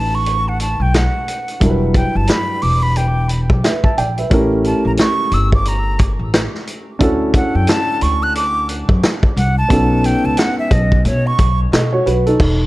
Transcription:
Already playing: A1 A3 C#4 D#4 F#4 B4 A5
0.15 C#6
0.26 closed hi-hat
0.48 F#5
0.60 A5, closed hi-hat
0.80 B1 G5
0.94 F#5, snare, closed hi-hat
1.28 closed hi-hat
1.48 closed hi-hat
1.60 E1 F#3 G3 D4 E4 A#4, kick, closed hi-hat
1.70 B4
1.94 G5, kick, closed hi-hat
2.15 G1 A5
2.27 B5, snare, closed hi-hat
2.62 E1 D6, open hi-hat
2.83 B5
2.96 G5, closed hi-hat
3.29 closed hi-hat
3.50 B1, kick
3.64 B4 E5, snare, closed hi-hat
3.84 E5 A5, kick
3.97 A#1 D5 G5, closed hi-hat
4.18 B4 E5, closed hi-hat
4.30 A1 A3 C#4 E4 G4 A#4, kick, closed hi-hat
4.64 A5, closed hi-hat
4.85 A#1 A#5
4.97 C#6, snare, closed hi-hat
5.32 G1 E6, closed hi-hat
5.52 D6, kick
5.65 A#5, closed hi-hat
5.99 kick, closed hi-hat
6.19 A1
6.33 snare, closed hi-hat
6.55 snare
6.67 closed hi-hat
6.99 D2 C#4 D4 E4 F#4 A4, kick, closed hi-hat
7.34 F#5, kick, closed hi-hat
7.55 F#2 G5
7.67 A5, snare, closed hi-hat
8.01 D2 C#6, closed hi-hat
8.23 F#6
8.35 D6, closed hi-hat
8.69 closed hi-hat
8.89 F#2, kick
9.03 snare, closed hi-hat
9.23 kick
9.36 C2 F#5, closed hi-hat
9.58 A5
9.69 B1 B3 C#4 D#4 F#4 A4, kick, closed hi-hat
10.04 G5, closed hi-hat
10.24 C#2 A5
10.37 F#5, snare, closed hi-hat
10.59 E5
10.71 B1 D#5, kick, closed hi-hat
10.92 kick
11.05 B2 C#5, closed hi-hat
11.27 C#6
11.38 B1, kick, closed hi-hat
11.72 B2 A4 D#5, snare, closed hi-hat
11.93 F#4 C#5
12.06 B1 F#4 B4, closed hi-hat
12.26 D#4 A4, closed hi-hat
12.40 E1, kick, crash

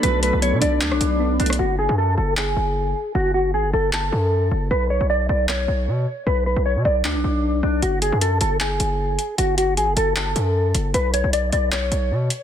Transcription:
Already playing: F#3 A3 B3 D4 A4 B5
0.03 B1 F#3 B4, closed hi-hat
0.23 A3 B4, closed hi-hat
0.33 B1
0.42 B3 C#5, closed hi-hat
0.53 B2
0.61 B1 D4 D5, closed hi-hat
0.81 D2 D4, clap, closed hi-hat
0.91 B1, cross-stick
1.00 B1 D4, closed hi-hat
1.20 B3
1.39 B1 A3 D4, closed hi-hat
1.46 cross-stick, closed hi-hat
1.53 closed hi-hat
1.59 F#1 F#4
1.79 G#4
1.89 F#2
1.98 A4
2.17 F#1 A4
2.37 clap
2.57 F#1
3.15 F#1 F#4
3.34 F#4
3.54 G#1 G#4
3.64 F#1
3.73 F#1 A4
3.93 A4, clap
4.12 F#2
4.51 F#1
4.71 B1 B4
4.90 C#5
5.01 B1
5.10 D5
5.29 B1 D5
5.49 C#5, clap
5.68 B1
5.88 B2
6.27 B1 B4
6.46 B4
6.56 B1
6.66 C#5
6.76 B2
6.85 B1 D5
7.04 D2 D4, clap
7.15 B1
7.24 B1
7.63 B1 D4
7.82 F#1 F#4, closed hi-hat
8.02 G#4, closed hi-hat
8.12 F#2
8.21 A4, closed hi-hat
8.41 F#1 A4, closed hi-hat
8.60 G#4, clap, closed hi-hat
8.80 F#1, closed hi-hat
9.19 closed hi-hat
9.38 F#1 F#4, closed hi-hat
9.58 F#4, closed hi-hat
9.77 G#1 G#4, closed hi-hat
9.88 F#1
9.97 F#1 A4, closed hi-hat
10.16 A4, clap, closed hi-hat
10.36 F#2, closed hi-hat
10.75 F#1, closed hi-hat
10.94 B1 B4, closed hi-hat
11.14 C#5, closed hi-hat
11.24 B1
11.33 D5, closed hi-hat
11.53 B1 D5, closed hi-hat
11.72 C#5, clap, closed hi-hat
11.92 B1, closed hi-hat
12.11 B2
12.30 closed hi-hat

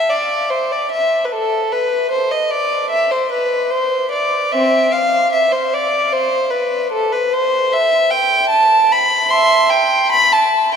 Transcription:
Already playing: E5
0.10 D5
0.50 C5
0.72 D5
0.91 E5
1.25 B4
1.32 A4
1.72 B4
2.11 C5
2.31 D#5
2.50 D5
2.90 E5
3.11 C5
3.32 B4
3.71 C5
4.11 D5
4.52 C4 E5
4.92 F5
5.33 E5
5.52 C5
5.73 D5
6.12 C5
6.50 B4
6.92 A4
7.12 B4
7.33 C5
7.73 E5
8.10 G5
8.49 A5
8.92 B5
9.30 E5 C6
9.70 G5
10.12 B5
10.32 A5

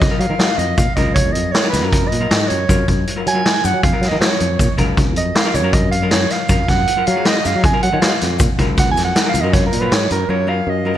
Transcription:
0.00 F2 D#5, kick, snare, closed hi-hat
0.10 F#3 F4 A#4
0.19 F#3 F5, closed hi-hat
0.29 D#3 F#3 F4 A#4
0.39 F#3, snare, closed hi-hat
0.58 F2 D#5, closed hi-hat, shaker
0.77 A#2 F5, kick, closed hi-hat, shaker
0.96 C#2 F#3 F4 A#4 D#5, kick, closed hi-hat, shaker
1.14 C#5, kick, closed hi-hat
1.32 F2 D#5, closed hi-hat
1.52 C#5, snare, closed hi-hat, shaker
1.63 F#3 F4 A#4
1.70 C#2 B4, snare, closed hi-hat, shaker
1.82 F#2 F#3 F4 A#4
1.89 A#4, kick, snare, closed hi-hat
2.08 A#2 D#5, closed hi-hat
2.20 F#3 F4 A#4
2.31 G#2, snare, closed hi-hat
2.48 F#2 C#5, closed hi-hat, shaker
2.69 F#2 F#3 F4 A#4, kick, closed hi-hat, shaker
2.88 F#2, kick, closed hi-hat
3.07 closed hi-hat, shaker
3.16 F#3 F4 A#4
3.27 F#3 G#5, closed hi-hat, shaker
3.34 F#3 F4 A#4
3.46 snare, closed hi-hat
3.64 F#2 F#5, closed hi-hat, shaker
3.74 F#3
3.83 F2 F5, kick, closed hi-hat
3.92 F#3 F4 A#4
4.01 F#3, snare, closed hi-hat
4.08 D#3 F#3 F4 D#5
4.12 A#4
4.20 F#3 C#5, snare, closed hi-hat
4.40 F2, closed hi-hat, shaker
4.59 A#2, kick, closed hi-hat, shaker
4.77 C#2 F#3 F4 A#4, kick, closed hi-hat
4.97 kick, closed hi-hat, shaker
5.15 F2 D#5, closed hi-hat, shaker
5.35 F5, snare, closed hi-hat
5.44 F#3 F4 A#4
5.54 C#2 C#5, closed hi-hat, shaker
5.63 F#2 F#3 F4 A#4
5.73 D#5, kick, closed hi-hat
5.91 F5, closed hi-hat
6.02 F#3 F4 A#4
6.11 C#5, snare, closed hi-hat
6.30 F5, snare, closed hi-hat, shaker
6.49 F#2 F#3 F4 A#4, kick, closed hi-hat, shaker
6.68 F#2 F#5, kick, snare, closed hi-hat
6.87 closed hi-hat, shaker
6.96 F#3 F4 A#4
7.06 F#3 F5, closed hi-hat, shaker
7.16 F#3 F4 G#4
7.25 D#5, snare, closed hi-hat
7.45 F#2 F5, snare, closed hi-hat, shaker
7.55 F#3
7.64 F2 G#5, kick, closed hi-hat
7.72 F#3 F4 A#4
7.83 F#3 F#5, closed hi-hat
7.91 D#3 F#3 F4 C#5
8.02 F#3 F5, snare, closed hi-hat
8.21 F2, snare, closed hi-hat, shaker
8.39 A#2, kick, closed hi-hat, shaker
8.58 C#2 F#3 F4 A#4, kick, closed hi-hat
8.77 F#5, kick, snare, closed hi-hat, shaker
8.92 G#5
8.97 F2, snare, closed hi-hat, shaker
9.05 F#5
9.16 snare, closed hi-hat
9.24 F#3 F4 A#4
9.29 F5
9.34 C#2, closed hi-hat, shaker
9.41 F#2 F#3 F4 A#4 D#5
9.53 C#5, kick, snare, closed hi-hat, shaker
9.67 A#4
9.72 A#2, closed hi-hat, shaker
9.80 F#3 F4 A#4 B4
9.91 G#2 C#5, snare, closed hi-hat
10.10 F#2 A#4, closed hi-hat, shaker
10.29 F#2 F#3 F4 A#4 C#5
10.47 F#3 F4 A#4 F5
10.67 F#2 D#5
10.85 F#3 F4 A#4
10.94 F#3 F4

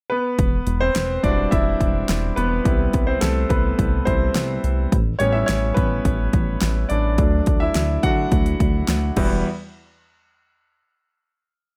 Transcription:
0.10 B3 B4
0.39 E1, kick, closed hi-hat
0.67 E1, closed hi-hat
0.81 C4 C5
0.95 E1, snare, closed hi-hat
1.23 E1 G3 D4 E4 F#4 D5, kick, closed hi-hat
1.51 E1 E4 E5, kick, closed hi-hat
1.81 E1, kick, closed hi-hat
2.09 E1, snare, closed hi-hat
2.36 E1 B3 B4, closed hi-hat
2.64 C2 G3 C4 E4, kick, closed hi-hat
2.93 C2, kick, closed hi-hat
3.07 C4 C5
3.21 C2 A3 A4, snare, closed hi-hat
3.49 C2 B3 B4, kick, closed hi-hat
3.79 C2, kick, closed hi-hat
4.05 C2 G3 C4 E4 C5, kick, closed hi-hat
4.35 C2, snare, closed hi-hat
4.64 C2, closed hi-hat
4.92 A1, kick, closed hi-hat
5.19 A1 G3 B3 C#4 C#5, closed hi-hat
5.32 E4 E5
5.46 A1 C#4 C#5, snare, closed hi-hat
5.74 A1 B3 B4, kick, closed hi-hat
6.05 A1, kick, closed hi-hat
6.33 A1, kick, closed hi-hat
6.61 A1, snare, closed hi-hat
6.89 A1 D4 D5, closed hi-hat
7.18 D2 F#3 A3 D4, kick, closed hi-hat
7.46 D2, kick, closed hi-hat
7.60 E4 E5
7.75 D2, snare, closed hi-hat
8.03 D2 F#3 A3 D4 F#4 F#5, kick, closed hi-hat
8.32 D2, kick, closed hi-hat
8.46 closed hi-hat
8.60 D2, kick, closed hi-hat
8.88 D2, snare, closed hi-hat
9.17 E1 E2 G3 E4 F#4 B4, kick, crash

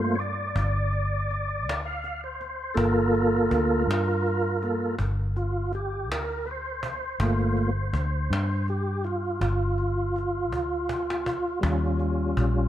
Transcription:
Already playing: G2 A3 A#3 F4 C5
0.15 C#5, cajon slap
0.20 D5, cajon slap
0.56 G1, cajon bass
0.93 cajon slap
1.31 cajon slap
1.67 D2, cajon slap
1.85 F5
2.04 cajon slap
2.24 C5
2.41 cajon slap
2.74 G1 A#3 F4 A4 A#4, cajon bass
3.15 cajon slap
3.51 D2, cajon bass
3.87 G2, cajon slap
4.27 cajon slap
4.62 A#3 F4 A4, cajon slap
4.98 G1, cajon bass, cajon slap
5.36 F4, cajon slap
5.73 G4, cajon slap
5.75 cajon slap
6.10 D2 A#4, cajon slap
6.45 B4, cajon slap
6.51 C5
6.83 cajon bass
7.20 G1 A3 A#3 F4, cajon bass
7.57 cajon slap
7.93 D2, cajon bass
8.30 G2, cajon slap
8.68 G4, cajon slap
9.04 F4, cajon slap
9.06 cajon slap
9.41 G1 F4, cajon bass
9.78 cajon slap
10.16 cajon slap
10.18 cajon slap
10.52 D2, cajon bass, cajon slap
10.89 cajon bass
11.10 cajon slap
11.26 cajon bass
11.61 D#2 G3 C#4 F4, cajon bass
11.99 cajon slap
12.37 A#1, cajon bass

